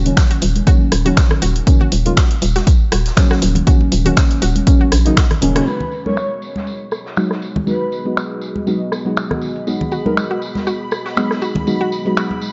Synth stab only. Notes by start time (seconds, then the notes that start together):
0.05 C#3 D#3 F#3 A#3 C#4
0.66 C#3 D#3 F#3 A#3 C#4
1.05 C#3 D#3 F#3 A#3 C#4
1.66 C#3 D#3 F#3 A#3 C#4
2.05 C#3 D#3 F#3 A#3 F4
3.16 C#3 D#3 F#3 A#3 C#4
3.66 C#3 D#3 F#3 A#3 C#4
4.05 C#3 D#3 F#3 A#3 C#4
4.66 C#3 D#3 F#3 A#3 C#4
5.05 C#3 D#3 F#3 A#3 D#4
5.41 C#3 D#3 F#3 A#3 C#4
5.55 C#3 D#3 F#3 A#3 C#4
5.66 F#3 G#3 B3 D#4 F#4
6.05 F#3 G#3 B3 D#4 A#4
7.16 F#3 G#3 B3 D#4 F#4
7.66 F#3 G#3 B3 D#4 F#4
8.05 F#3 G#3 B3 D#4 F#4
8.66 F#3 G#3 B3 D#4 F#4
9.05 F#3 G#3 B3 D#4 F#4
9.66 F#3 G#3 B3 D#4 F#4
10.05 F#3 G#3 B3 D#4 A#4
11.16 F#3 G#3 B3 D#4 F#4
11.66 F#3 G#3 B3 D#4 F#4
12.05 F#3 G#3 B3 D#4 F#4